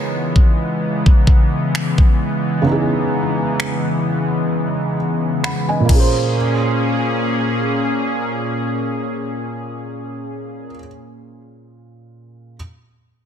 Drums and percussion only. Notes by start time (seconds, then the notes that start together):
0.36 kick
1.06 kick
1.27 kick
1.75 finger snap
1.98 kick
3.60 finger snap
5.44 finger snap
5.89 kick, crash